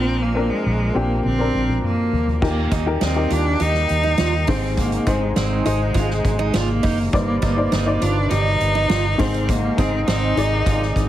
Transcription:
Already playing: fingered electric bass A#1, upright piano A#2 F3 C4 D4 A#4, cello C4
0.22 cello A#3
0.35 upright piano C4 D4 A#4
0.50 cello G#3
0.66 fingered electric bass A#1
0.94 fingered electric bass A#1, cello A#3, upright piano C4 D4 G4
1.24 fingered electric bass A#1, cello C4, high tom
1.39 upright piano C4 D4 A#4
1.54 fingered electric bass A#1, mid tom
1.69 mid tom
1.84 cello A#3, mid tom
2.13 floor tom
2.27 floor tom
2.42 fingered electric bass D#2, upright piano A#2 D#4 G4 A#4, analog synth pad D#3 G3 A#3 G4, cello A#3, kick, crash
2.72 fingered electric bass D#2, cello A#3, steel-string acoustic guitar D#4, kick, closed hi-hat
2.85 upright piano D#4 G4 A#4
3.01 fingered electric bass D#2, cello C4, steel-string acoustic guitar D#4, snare, closed hi-hat
3.15 upright piano D#4 G4 A#4
3.31 fingered electric bass D#2, cello D4, steel-string acoustic guitar F4, closed hi-hat
3.60 fingered electric bass D#2, cello D#4, steel-string acoustic guitar G4, closed hi-hat
3.74 snare
3.89 fingered electric bass D#2, closed hi-hat
4.04 steel-string acoustic guitar D#4
4.17 fingered electric bass D#2, steel-string acoustic guitar F4, snare, closed hi-hat
4.47 fingered electric bass G#1, upright piano G#2 D#3 D#4 G#4 C5, analog synth pad C3 G#3 D#4, cello C4, steel-string acoustic guitar D#4, kick, open hi-hat
4.77 cello A#3, kick, closed hi-hat
4.92 closed hi-hat
5.06 fingered electric bass G#1, cello G#3, steel-string acoustic guitar C4, upright piano D#4 G#4 C5, kick, closed hi-hat
5.36 fingered electric bass G#1, cello G#3, steel-string acoustic guitar C4, snare, closed hi-hat
5.65 fingered electric bass G#1, upright piano D#4 G#4 C5, steel-string acoustic guitar D#4, closed hi-hat
5.94 fingered electric bass G#1, steel-string acoustic guitar F4, kick, closed hi-hat
6.10 snare
6.25 fingered electric bass G#1, kick, closed hi-hat
6.39 steel-string acoustic guitar D#4
6.53 fingered electric bass G#1, cello A#3, steel-string acoustic guitar F4, snare, closed hi-hat
6.83 fingered electric bass F#1, steel-string acoustic guitar D#4, kick, open hi-hat
7.13 fingered electric bass G1, upright piano G2 G3 D#4 C5 D5, analog synth pad G3 D5, cello A#3, kick, closed hi-hat
7.42 fingered electric bass G1, cello A#3, steel-string acoustic guitar D#4, kick, closed hi-hat
7.56 upright piano D#4 C5 D5
7.72 fingered electric bass G1, steel-string acoustic guitar D#4, snare, closed hi-hat
7.86 upright piano D#4 C5 D5
8.02 fingered electric bass G1, cello D4, steel-string acoustic guitar F4, closed hi-hat
8.31 fingered electric bass G1, cello D#4, steel-string acoustic guitar G4, closed hi-hat
8.61 fingered electric bass G1, closed hi-hat
8.75 steel-string acoustic guitar D#4
8.89 fingered electric bass G1, steel-string acoustic guitar F4, snare, closed hi-hat
9.17 fingered electric bass G#1, upright piano G#2 D#3 D#4 G#4 C5, analog synth pad G#3 D#4, cello C4, steel-string acoustic guitar D#4, kick, open hi-hat
9.34 closed hi-hat
9.49 cello A#3, kick, closed hi-hat
9.77 fingered electric bass G#1, steel-string acoustic guitar C4, cello C4, upright piano D#4 G#4 D#5, kick, closed hi-hat
10.07 fingered electric bass G#1, steel-string acoustic guitar C4, cello D#4, snare, closed hi-hat
10.36 fingered electric bass G#1, upright piano D#4 G#4 D5, steel-string acoustic guitar D#4, closed hi-hat
10.66 fingered electric bass G#1, steel-string acoustic guitar F4, kick, closed hi-hat
10.82 snare
10.96 fingered electric bass G#1, kick, closed hi-hat

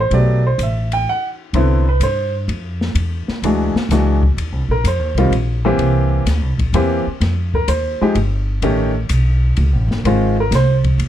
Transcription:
0.00 grand piano C5
0.11 upright bass B1, grand piano F#3 A3 B3 G4 D5, ride
0.47 grand piano C5
0.58 upright bass A1, hi-hat pedal, ride
0.63 grand piano E5
0.92 grand piano G5, ride
1.09 grand piano F#5
1.53 upright bass C2, grand piano D3 B3 C4 E4, ride
1.89 grand piano B4
2.00 upright bass G2, grand piano C5, hi-hat pedal, ride
2.48 upright bass F2, ride
2.81 snare
2.95 upright bass E2, ride
3.28 muted upright bass stroke, snare
3.42 upright bass D2, grand piano E3 G#3 D4 F#4, ride
3.75 muted upright bass stroke, snare
3.89 upright bass C#2, grand piano E3 G#3 D4 F#4, snare, hi-hat pedal, ride
4.23 kick
4.37 upright bass D#2, ride
4.52 upright bass C2
4.69 upright bass A#1, grand piano A#4
4.84 upright bass F2, grand piano C5, hi-hat pedal, ride
4.99 upright bass D#2
5.14 upright bass C2, grand piano D#3 G3, ride
5.18 grand piano C4 F4
5.31 upright bass A#1, ride
5.65 grand piano E3 A#3 C4 G4
5.78 upright bass C2, ride
6.25 upright bass D2, snare, hi-hat pedal, ride
6.41 upright bass C2
6.58 upright bass A#1, kick, ride
6.73 upright bass E2, grand piano E3 A#3 C4 G4, ride
7.07 muted upright bass stroke
7.20 upright bass F2, snare, ride
7.54 grand piano A#4, kick
7.68 upright bass D#2, grand piano C5, hi-hat pedal, ride
8.01 grand piano F3 G#3 D#4 G4, muted upright bass stroke
8.15 upright bass G1, ride
8.62 upright bass A1, grand piano D#3 A3 C#4 G4, ride
9.09 upright bass B1, hi-hat pedal, ride
9.56 upright bass C#2, ride
9.73 upright bass A1
9.88 upright bass G1, snare
10.04 upright bass G#1, grand piano D#3 G#3 C4 F4, ride
10.40 grand piano A#4
10.51 upright bass C2, snare, hi-hat pedal, ride
10.55 grand piano C5
10.84 kick, ride
10.98 upright bass D#2, ride

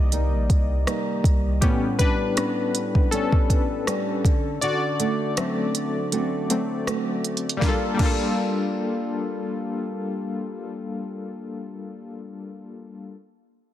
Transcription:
Already playing: 808-style bass C2, nylon-string guitar C3 G3 A#3 D#4, synth keys D#3 A#3 G4 D5 D#5
0.12 nylon-string guitar G3 A#3 D#4, closed hi-hat
0.32 808-style bass A#1
0.50 808-style bass C2, kick, closed hi-hat
0.87 nylon-string guitar G3 A#3 D#4, cross-stick, closed hi-hat
1.24 808-style bass C2, kick, closed hi-hat
1.61 nylon-string guitar A2 C#4, synth keys G3 B3 C#4 G4, kick, closed hi-hat
1.99 nylon-string guitar G3, synth keys D4 B4, kick, closed hi-hat
2.37 nylon-string guitar B3, cross-stick, closed hi-hat
2.75 closed hi-hat
2.95 kick
3.11 nylon-string guitar G3 B3 C#4, synth keys C#4 A4, closed hi-hat
3.32 kick
3.50 kick, closed hi-hat
3.87 nylon-string guitar G3 B3 C#4, cross-stick, closed hi-hat
4.25 nylon-string guitar D3, kick, closed hi-hat
4.61 nylon-string guitar D3 F#4, synth keys F#4 D5, closed hi-hat
5.00 nylon-string guitar A3, closed hi-hat
5.37 synth keys F#3 A3 C4, nylon-string guitar C4, cross-stick, closed hi-hat
5.75 closed hi-hat
6.12 nylon-string guitar A3 C4 F#4, closed hi-hat
6.50 synth keys F#3 A3 C4, closed hi-hat
6.87 nylon-string guitar A3 C4 F#4, cross-stick, closed hi-hat
7.24 closed hi-hat
7.37 closed hi-hat
7.49 closed hi-hat
7.57 synth keys G3 A#3, nylon-string guitar G3
7.62 nylon-string guitar A#3, synth keys D4 F4, kick, snare
7.68 nylon-string guitar F4, synth keys A4
7.73 nylon-string guitar A4
7.94 synth keys G3 A#3, nylon-string guitar G3
7.99 nylon-string guitar A#3, synth keys D4 F4, kick, crash
8.05 nylon-string guitar F4, synth keys A4
8.11 nylon-string guitar A4

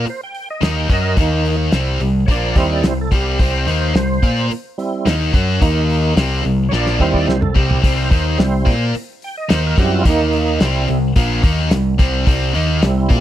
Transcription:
0.06 tonewheel organ C5, muted picked electric bass stroke, muted distorted electric guitar stroke, open hi-hat
0.23 tonewheel organ G5
0.35 open hi-hat
0.50 tonewheel organ D#5
0.61 picked electric bass D#2, distorted electric guitar D#3 A#3 D#4, snare, open hi-hat
0.78 tonewheel organ G5
0.89 picked electric bass F#2, distorted electric guitar F#3 C#4 F#4, tonewheel organ A#4 D#5, kick, open hi-hat
1.17 picked electric bass D#2, distorted electric guitar D#3 A#3 D#4, tonewheel organ D#3 A#3, kick, open hi-hat
1.21 tonewheel organ D#4
1.45 open hi-hat
1.72 picked electric bass C2, distorted electric guitar C3 G3 C4, snare, open hi-hat
2.00 picked electric bass C2, distorted electric guitar C3 G3, open hi-hat
2.26 picked electric bass A#1, distorted electric guitar A#2 F3 A#3, tonewheel organ C#5, kick, open hi-hat
2.31 tonewheel organ D5
2.56 picked electric bass D#2, distorted electric guitar D#3 A#3 D#4, tonewheel organ G3 C4 E4 C5, kick, open hi-hat
2.73 tonewheel organ D5
2.83 picked electric bass C2, distorted electric guitar C3 G3, tonewheel organ C5, snare, open hi-hat
3.01 tonewheel organ A4
3.11 picked electric bass C2, distorted electric guitar C3 G3 C4, tonewheel organ G4, kick, open hi-hat
3.39 picked electric bass C2, distorted electric guitar C3 G3 C4, tonewheel organ C5, kick, open hi-hat
3.67 picked electric bass D#2, distorted electric guitar D#3 A#3 D#4, open hi-hat
3.95 picked electric bass C2, distorted electric guitar C3 G3, snare, open hi-hat
4.23 picked electric bass A#2, distorted electric guitar A#3 F4 A#4, kick, open hi-hat
4.50 muted distorted electric guitar stroke, muted picked electric bass stroke, open hi-hat
4.78 tonewheel organ G3 C4 E4, open hi-hat
5.05 picked electric bass D#2, distorted electric guitar D#3 A#3 D#4, snare, open hi-hat
5.33 picked electric bass F#2, distorted electric guitar F#3 C#4 F#4, kick, open hi-hat
5.61 picked electric bass D#2, distorted electric guitar D#3 A#3 D#4, tonewheel organ D#3 A#3 D#4, kick, open hi-hat
5.90 open hi-hat
6.16 picked electric bass C2, distorted electric guitar C3 G3 C4, snare, open hi-hat
6.44 picked electric bass C2, distorted electric guitar C3 G3, open hi-hat
6.69 picked electric bass A#1, distorted electric guitar A#2 F3 A#3, tonewheel organ C#5
6.73 tonewheel organ D5, snare
6.87 snare
6.99 picked electric bass D#2, distorted electric guitar D#3 A#3 D#4, tonewheel organ G3 C4 E4 C5, kick
7.13 tonewheel organ D5, kick
7.27 picked electric bass C2, distorted electric guitar C3 G3, tonewheel organ C5, snare
7.41 tonewheel organ A4, mid tom
7.54 picked electric bass C2, distorted electric guitar C3 G3 C4, tonewheel organ G4, kick
7.71 floor tom
7.82 picked electric bass C2, distorted electric guitar C3 G3 C4, tonewheel organ C5, kick, open hi-hat
8.10 picked electric bass D#2, distorted electric guitar D#3 A#3 D#4, kick, open hi-hat
8.38 picked electric bass C2, distorted electric guitar C3 G3, tonewheel organ G3 C4 E4, snare, open hi-hat
8.65 picked electric bass A#2, distorted electric guitar A#3 F4 A#4, kick, open hi-hat
8.93 muted distorted electric guitar stroke, muted picked electric bass stroke, open hi-hat
9.22 tonewheel organ G5, open hi-hat
9.37 tonewheel organ D#5
9.49 picked electric bass D#2, distorted electric guitar D#3 A#3 D#4, snare, open hi-hat
9.53 tonewheel organ C5
9.67 tonewheel organ A#4
9.77 picked electric bass F#2, distorted electric guitar F#3 C#4 F#4, tonewheel organ G3 C4 E4 G4, kick, open hi-hat
9.93 tonewheel organ F4
10.05 picked electric bass D#2, distorted electric guitar D#3 A#3 D#4, tonewheel organ D#3, kick, open hi-hat
10.10 tonewheel organ A#3 D#4
10.33 open hi-hat
10.60 picked electric bass C2, distorted electric guitar C3 G3 C4, tonewheel organ G3 C4, snare, open hi-hat
10.65 tonewheel organ E4
10.88 picked electric bass C2, distorted electric guitar C3 G3, open hi-hat
11.16 picked electric bass A#1, distorted electric guitar A#2 F3 A#3, kick, open hi-hat
11.43 picked electric bass D#2, distorted electric guitar D#3 A#3 D#4, kick, open hi-hat
11.71 picked electric bass C2, distorted electric guitar C3 G3, snare, open hi-hat
11.98 picked electric bass C2, distorted electric guitar C3 G3 C4, kick, open hi-hat
12.27 picked electric bass C2, distorted electric guitar C3 G3 C4, kick, open hi-hat
12.54 picked electric bass D#2, distorted electric guitar D#3 A#3 D#4, open hi-hat
12.82 picked electric bass C2, distorted electric guitar C3 G3, tonewheel organ G3 C4 E4, snare, open hi-hat
13.09 picked electric bass A#2, distorted electric guitar A#3 F4 A#4, kick, open hi-hat

